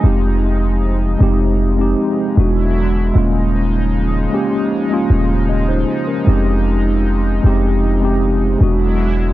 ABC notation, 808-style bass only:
X:1
M:4/4
L:1/8
Q:1/4=77
K:Fm
V:1 name="808-style bass" clef=bass
F,,,3 F,,,2 z =E,,,2 | E,,,3 z2 E,,,2 z | F,,,3 F,,,3 =E,,,2 |]